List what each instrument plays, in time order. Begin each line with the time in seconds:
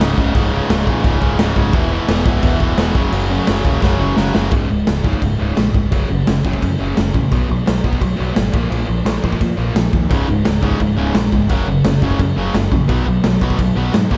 0.00 picked electric bass C#1, distorted electric guitar C#2 G#2 C#3, snare, crash
0.17 picked electric bass C#1, distorted electric guitar C#2 G#2 C#3, kick
0.34 picked electric bass C#1, distorted electric guitar C#2 G#2 C#3, kick, crash
0.51 distorted electric guitar C#2 G#2 C#3
0.68 picked electric bass C#1, distorted electric guitar C#2 G#2 C#3, snare, crash
0.86 picked electric bass A#1, distorted electric guitar C#2 G#2 C#3, kick
1.03 picked electric bass C#1, distorted electric guitar C#2 G#2 C#3, kick, crash
1.21 picked electric bass C#1, distorted electric guitar C#2 G#2 C#3, kick
1.39 picked electric bass C#1, distorted electric guitar C#2 G#2 C#3, snare, crash
1.56 picked electric bass C#1, distorted electric guitar C#2 G#2 C#3, kick
1.73 picked electric bass E1, distorted electric guitar E2 B2 E3, kick, crash
1.90 distorted electric guitar E2 B2 E3
2.08 picked electric bass E1, distorted electric guitar E2 B2 E3, snare, crash
2.25 picked electric bass C#1, distorted electric guitar E2 B2 E3, kick
2.43 picked electric bass E1, distorted electric guitar E2 B2 E3, kick, crash
2.60 picked electric bass E1, distorted electric guitar E2 B2 E3, kick
2.77 picked electric bass E1, distorted electric guitar E2 B2 E3, snare, crash
2.95 picked electric bass F#1, distorted electric guitar F#2 C#3 F#3, kick
3.12 picked electric bass F#1, distorted electric guitar F#2 C#3 F#3, crash
3.30 distorted electric guitar F#2 C#3 F#3
3.47 picked electric bass F#1, distorted electric guitar F#2 C#3 F#3, snare, crash
3.65 picked electric bass D#1, distorted electric guitar F#2 C#3 F#3, kick
3.82 picked electric bass F#1, distorted electric guitar F#2 C#3 F#3, kick, snare
3.99 picked electric bass F#1, distorted electric guitar F#2 C#3 F#3
4.16 picked electric bass F#1, distorted electric guitar F#2 C#3 F#3, snare
4.33 picked electric bass F#1, distorted electric guitar F#2 C#3 F#3, snare
4.51 picked electric bass C#1, distorted electric guitar C#2 G#2 C#3, kick, crash
4.68 picked electric bass C#1, distorted electric guitar C#2 G#2
4.87 picked electric bass C#1, distorted electric guitar C#2 G#2, snare, crash
5.04 picked electric bass C#1, distorted electric guitar C#2 G#2 C#3, kick
5.13 kick
5.21 picked electric bass C#1, distorted electric guitar C#2 G#2, kick, crash
5.39 picked electric bass C#1, distorted electric guitar C#2 G#2 C#3
5.56 picked electric bass A#1, distorted electric guitar C#2 G#2, snare, crash
5.74 picked electric bass C#1, distorted electric guitar C#2 G#2, kick
5.91 picked electric bass F#1, distorted electric guitar F#2 C#3 F#3, kick, crash
6.09 picked electric bass F#1, distorted electric guitar F#2 C#3
6.27 picked electric bass F#1, distorted electric guitar F#2 C#3, snare, crash
6.45 picked electric bass F#1, distorted electric guitar F#2 C#3 F#3, kick
6.53 kick
6.62 distorted electric guitar F#2 C#3, picked electric bass F#2, kick, crash
6.79 picked electric bass F#1, distorted electric guitar F#2 C#3 F#3
6.96 picked electric bass F#1, distorted electric guitar F#2 C#3, snare, crash
7.14 picked electric bass A#1, distorted electric guitar F#2 C#3, kick
7.31 picked electric bass B1, distorted electric guitar B2 F#3 B3, kick, crash
7.49 picked electric bass B1, distorted electric guitar B2 F#3
7.66 picked electric bass B1, distorted electric guitar B2 F#3, snare, crash
7.84 picked electric bass B1, distorted electric guitar B2 F#3 B3, kick
7.93 kick
8.01 picked electric bass B1, distorted electric guitar B2 F#3, kick, crash
8.16 picked electric bass B1, distorted electric guitar B2 F#3 B3
8.35 picked electric bass G#1, distorted electric guitar B2 F#3, snare, crash
8.52 picked electric bass A#1, distorted electric guitar A#2 F3 A#3, kick
8.70 picked electric bass A#1, distorted electric guitar A#2 F3 A#3, crash
8.87 picked electric bass A#1, distorted electric guitar A#2 F3
9.05 picked electric bass A#1, distorted electric guitar A#2 F3, snare, crash
9.22 picked electric bass A#1, distorted electric guitar A#2 F3 A#3, kick
9.32 kick
9.40 distorted electric guitar A#2 F3, picked electric bass A#2, kick, crash
9.57 picked electric bass A#1, distorted electric guitar A#2 F3 A#3
9.74 picked electric bass A#1, distorted electric guitar A#2 F3, snare, crash
9.92 picked electric bass D#2, distorted electric guitar A#2 F3, kick
10.10 picked electric bass C#1, distorted electric guitar C#2 G#2 C#3, kick, crash
10.28 picked electric bass C#1, distorted electric guitar C#2 G#2
10.45 picked electric bass C#1, distorted electric guitar C#2 G#2, snare, crash
10.62 picked electric bass C#1, distorted electric guitar C#2 G#2 C#3, kick
10.71 kick
10.80 picked electric bass C#1, distorted electric guitar C#2 G#2, kick, crash
10.98 picked electric bass C#1, distorted electric guitar C#2 G#2 C#3
11.14 picked electric bass A#1, distorted electric guitar C#2 G#2, snare, crash
11.32 picked electric bass C#1, distorted electric guitar C#2 G#2, kick
11.49 picked electric bass F#1, distorted electric guitar F#2 C#3 F#3, kick, crash
11.67 picked electric bass F#1, distorted electric guitar F#2 C#3
11.84 picked electric bass F#1, distorted electric guitar F#2 C#3, snare, crash
12.01 picked electric bass F#1, distorted electric guitar F#2 C#3 F#3, kick
12.11 kick
12.19 picked electric bass F#2, distorted electric guitar F#2 C#3, kick, crash
12.36 picked electric bass F#1, distorted electric guitar F#2 C#3 F#3
12.54 picked electric bass F#1, distorted electric guitar F#2 C#3, snare, crash
12.71 picked electric bass A#1, distorted electric guitar F#2 C#3, kick
12.88 picked electric bass B1, distorted electric guitar B2 F#3 B3, kick, crash
13.06 picked electric bass B1, distorted electric guitar B2 F#3
13.23 picked electric bass B1, distorted electric guitar B2 F#3, snare, crash
13.41 picked electric bass B1, distorted electric guitar B2 F#3 B3, kick
13.50 kick
13.58 picked electric bass B1, distorted electric guitar B2 F#3, kick, crash
13.75 picked electric bass B1, distorted electric guitar B2 F#3 B3
13.93 picked electric bass G#2, distorted electric guitar B2 F#3, snare, crash
14.09 picked electric bass A#1, distorted electric guitar A#2 F3 A#3, kick